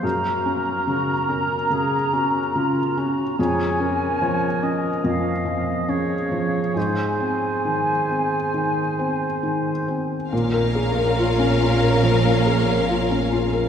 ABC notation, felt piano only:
X:1
M:4/4
L:1/16
Q:1/4=70
K:Bbm
V:1 name="Felt piano"
G,,2 D2 D,2 D2 D,2 D2 D,2 D2 | F,,2 D2 F,2 D2 F,,2 F,2 D2 F,2 | A,,2 C2 E,2 C2 E,2 C2 E,2 C2 | B,, B A B F D F B F, B A B F D F B |]